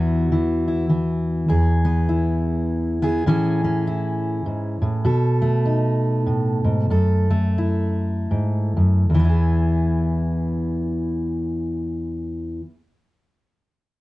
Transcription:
0, 0, Header, 1, 2, 480
1, 0, Start_track
1, 0, Key_signature, 4, "major"
1, 0, Tempo, 592885
1, 1201, Time_signature, 3, 2, 24, 8
1, 4564, Tempo, 628272
1, 5524, Tempo, 677966
1, 6004, Tempo, 729040
1, 6484, Tempo, 794702
1, 6964, Tempo, 834492
1, 9790, End_track
2, 0, Start_track
2, 0, Title_t, "Steel-string acoustic guitar"
2, 0, Program_c, 0, 25
2, 0, Note_on_c, 0, 40, 75
2, 0, Note_on_c, 0, 52, 57
2, 0, Note_on_c, 0, 59, 50
2, 0, Note_on_c, 0, 64, 54
2, 0, Note_on_c, 0, 66, 73
2, 249, Note_off_c, 0, 52, 0
2, 259, Note_on_c, 0, 52, 62
2, 539, Note_off_c, 0, 64, 0
2, 548, Note_on_c, 0, 64, 45
2, 714, Note_off_c, 0, 52, 0
2, 724, Note_on_c, 0, 52, 55
2, 1187, Note_off_c, 0, 64, 0
2, 1191, Note_off_c, 0, 59, 0
2, 1191, Note_off_c, 0, 66, 0
2, 1192, Note_off_c, 0, 40, 0
2, 1202, Note_on_c, 0, 40, 72
2, 1210, Note_on_c, 0, 68, 70
2, 1496, Note_on_c, 0, 59, 50
2, 1690, Note_on_c, 0, 64, 55
2, 2437, Note_off_c, 0, 59, 0
2, 2443, Note_off_c, 0, 64, 0
2, 2447, Note_on_c, 0, 59, 56
2, 2448, Note_off_c, 0, 68, 0
2, 2453, Note_on_c, 0, 64, 57
2, 2458, Note_on_c, 0, 68, 66
2, 2616, Note_off_c, 0, 59, 0
2, 2620, Note_off_c, 0, 64, 0
2, 2622, Note_off_c, 0, 68, 0
2, 2637, Note_off_c, 0, 40, 0
2, 2638, Note_off_c, 0, 52, 0
2, 2641, Note_on_c, 0, 45, 67
2, 2647, Note_on_c, 0, 52, 59
2, 2652, Note_on_c, 0, 61, 64
2, 2663, Note_on_c, 0, 64, 60
2, 2666, Note_on_c, 0, 68, 68
2, 2932, Note_off_c, 0, 61, 0
2, 2949, Note_on_c, 0, 61, 51
2, 3125, Note_off_c, 0, 64, 0
2, 3135, Note_on_c, 0, 64, 51
2, 3601, Note_off_c, 0, 45, 0
2, 3610, Note_on_c, 0, 44, 53
2, 3892, Note_off_c, 0, 44, 0
2, 3899, Note_on_c, 0, 45, 57
2, 4066, Note_off_c, 0, 64, 0
2, 4069, Note_off_c, 0, 61, 0
2, 4071, Note_off_c, 0, 68, 0
2, 4085, Note_off_c, 0, 52, 0
2, 4086, Note_on_c, 0, 47, 67
2, 4087, Note_off_c, 0, 45, 0
2, 4090, Note_on_c, 0, 69, 63
2, 4386, Note_on_c, 0, 57, 46
2, 4577, Note_on_c, 0, 63, 52
2, 5043, Note_on_c, 0, 45, 54
2, 5330, Note_off_c, 0, 45, 0
2, 5333, Note_on_c, 0, 44, 57
2, 5507, Note_off_c, 0, 69, 0
2, 5508, Note_off_c, 0, 63, 0
2, 5527, Note_off_c, 0, 44, 0
2, 5528, Note_off_c, 0, 47, 0
2, 5530, Note_on_c, 0, 42, 63
2, 5536, Note_on_c, 0, 69, 55
2, 5806, Note_off_c, 0, 57, 0
2, 5815, Note_on_c, 0, 57, 46
2, 6010, Note_on_c, 0, 64, 50
2, 6486, Note_off_c, 0, 42, 0
2, 6489, Note_on_c, 0, 44, 50
2, 6763, Note_off_c, 0, 44, 0
2, 6765, Note_on_c, 0, 42, 52
2, 6943, Note_off_c, 0, 64, 0
2, 6945, Note_off_c, 0, 69, 0
2, 6963, Note_off_c, 0, 42, 0
2, 6965, Note_on_c, 0, 40, 52
2, 6968, Note_off_c, 0, 57, 0
2, 6992, Note_on_c, 0, 52, 56
2, 7021, Note_on_c, 0, 59, 51
2, 7051, Note_on_c, 0, 64, 53
2, 7078, Note_on_c, 0, 68, 42
2, 8978, Note_off_c, 0, 40, 0
2, 9005, Note_off_c, 0, 52, 0
2, 9035, Note_off_c, 0, 59, 0
2, 9064, Note_off_c, 0, 64, 0
2, 9092, Note_off_c, 0, 68, 0
2, 9790, End_track
0, 0, End_of_file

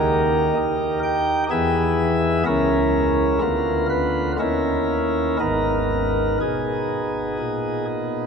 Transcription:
0, 0, Header, 1, 2, 480
1, 0, Start_track
1, 0, Key_signature, 5, "minor"
1, 0, Tempo, 955414
1, 1236, Time_signature, 3, 2, 24, 8
1, 2205, Tempo, 998336
1, 4069, End_track
2, 0, Start_track
2, 0, Title_t, "Pipe organ"
2, 0, Program_c, 0, 19
2, 0, Note_on_c, 0, 39, 69
2, 0, Note_on_c, 0, 51, 69
2, 0, Note_on_c, 0, 63, 49
2, 0, Note_on_c, 0, 67, 49
2, 0, Note_on_c, 0, 70, 104
2, 267, Note_off_c, 0, 39, 0
2, 267, Note_off_c, 0, 51, 0
2, 272, Note_off_c, 0, 63, 0
2, 282, Note_on_c, 0, 63, 65
2, 498, Note_off_c, 0, 70, 0
2, 519, Note_on_c, 0, 79, 106
2, 721, Note_off_c, 0, 79, 0
2, 737, Note_off_c, 0, 67, 0
2, 743, Note_off_c, 0, 63, 0
2, 755, Note_on_c, 0, 68, 49
2, 757, Note_on_c, 0, 40, 65
2, 757, Note_on_c, 0, 52, 68
2, 758, Note_on_c, 0, 59, 45
2, 758, Note_on_c, 0, 76, 106
2, 1221, Note_off_c, 0, 40, 0
2, 1221, Note_off_c, 0, 68, 0
2, 1222, Note_off_c, 0, 52, 0
2, 1222, Note_off_c, 0, 59, 0
2, 1222, Note_off_c, 0, 76, 0
2, 1235, Note_on_c, 0, 37, 64
2, 1235, Note_on_c, 0, 70, 100
2, 1236, Note_on_c, 0, 49, 66
2, 1236, Note_on_c, 0, 64, 46
2, 1237, Note_on_c, 0, 61, 47
2, 1701, Note_off_c, 0, 37, 0
2, 1701, Note_off_c, 0, 49, 0
2, 1701, Note_off_c, 0, 61, 0
2, 1701, Note_off_c, 0, 64, 0
2, 1715, Note_on_c, 0, 50, 62
2, 1716, Note_on_c, 0, 38, 64
2, 1716, Note_on_c, 0, 59, 52
2, 1716, Note_on_c, 0, 65, 47
2, 1938, Note_off_c, 0, 70, 0
2, 1958, Note_on_c, 0, 71, 92
2, 2168, Note_off_c, 0, 71, 0
2, 2190, Note_off_c, 0, 50, 0
2, 2191, Note_off_c, 0, 38, 0
2, 2191, Note_off_c, 0, 59, 0
2, 2191, Note_off_c, 0, 65, 0
2, 2207, Note_on_c, 0, 39, 57
2, 2207, Note_on_c, 0, 51, 62
2, 2207, Note_on_c, 0, 64, 41
2, 2208, Note_on_c, 0, 61, 42
2, 2208, Note_on_c, 0, 70, 80
2, 2674, Note_off_c, 0, 39, 0
2, 2674, Note_off_c, 0, 51, 0
2, 2675, Note_off_c, 0, 61, 0
2, 2675, Note_off_c, 0, 64, 0
2, 2675, Note_off_c, 0, 70, 0
2, 2690, Note_on_c, 0, 32, 56
2, 2691, Note_on_c, 0, 44, 52
2, 2691, Note_on_c, 0, 63, 42
2, 2691, Note_on_c, 0, 70, 91
2, 2692, Note_on_c, 0, 59, 37
2, 3161, Note_off_c, 0, 32, 0
2, 3161, Note_off_c, 0, 44, 0
2, 3161, Note_off_c, 0, 70, 0
2, 3176, Note_on_c, 0, 47, 52
2, 3176, Note_on_c, 0, 68, 60
2, 3635, Note_off_c, 0, 47, 0
2, 3651, Note_on_c, 0, 46, 55
2, 3869, Note_off_c, 0, 68, 0
2, 4069, Note_off_c, 0, 46, 0
2, 4069, Note_off_c, 0, 59, 0
2, 4069, Note_off_c, 0, 63, 0
2, 4069, End_track
0, 0, End_of_file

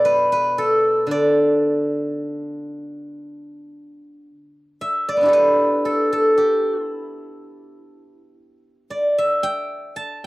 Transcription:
0, 0, Header, 1, 2, 480
1, 0, Start_track
1, 0, Tempo, 1065719
1, 491, Time_signature, 2, 2, 24, 8
1, 1458, Tempo, 1036269
1, 4713, End_track
2, 0, Start_track
2, 0, Title_t, "Guzheng"
2, 0, Program_c, 0, 107
2, 0, Note_on_c, 0, 47, 51
2, 0, Note_on_c, 0, 69, 75
2, 0, Note_on_c, 0, 74, 78
2, 22, Note_on_c, 0, 71, 82
2, 143, Note_off_c, 0, 71, 0
2, 144, Note_on_c, 0, 71, 75
2, 260, Note_off_c, 0, 69, 0
2, 262, Note_on_c, 0, 69, 71
2, 480, Note_on_c, 0, 50, 47
2, 489, Note_off_c, 0, 47, 0
2, 499, Note_off_c, 0, 74, 0
2, 500, Note_on_c, 0, 74, 75
2, 1065, Note_off_c, 0, 71, 0
2, 1251, Note_off_c, 0, 69, 0
2, 1332, Note_off_c, 0, 74, 0
2, 1937, Note_off_c, 0, 50, 0
2, 2188, Note_on_c, 0, 76, 75
2, 2314, Note_on_c, 0, 74, 77
2, 2352, Note_on_c, 0, 59, 32
2, 2372, Note_on_c, 0, 62, 40
2, 2380, Note_on_c, 0, 64, 45
2, 2392, Note_on_c, 0, 67, 51
2, 2406, Note_on_c, 0, 69, 50
2, 2428, Note_on_c, 0, 71, 84
2, 2667, Note_off_c, 0, 69, 0
2, 2669, Note_on_c, 0, 69, 65
2, 2794, Note_off_c, 0, 69, 0
2, 2796, Note_on_c, 0, 69, 67
2, 2910, Note_off_c, 0, 67, 0
2, 2912, Note_on_c, 0, 67, 66
2, 2985, Note_off_c, 0, 76, 0
2, 3134, Note_off_c, 0, 64, 0
2, 3134, Note_off_c, 0, 67, 0
2, 3134, Note_on_c, 0, 64, 66
2, 3170, Note_off_c, 0, 74, 0
2, 3375, Note_off_c, 0, 71, 0
2, 3668, Note_off_c, 0, 62, 0
2, 3787, Note_off_c, 0, 59, 0
2, 3812, Note_off_c, 0, 69, 0
2, 4003, Note_off_c, 0, 64, 0
2, 4083, Note_on_c, 0, 74, 58
2, 4213, Note_on_c, 0, 76, 73
2, 4327, Note_on_c, 0, 79, 91
2, 4573, Note_on_c, 0, 81, 80
2, 4701, Note_off_c, 0, 79, 0
2, 4713, Note_off_c, 0, 74, 0
2, 4713, Note_off_c, 0, 76, 0
2, 4713, Note_off_c, 0, 81, 0
2, 4713, End_track
0, 0, End_of_file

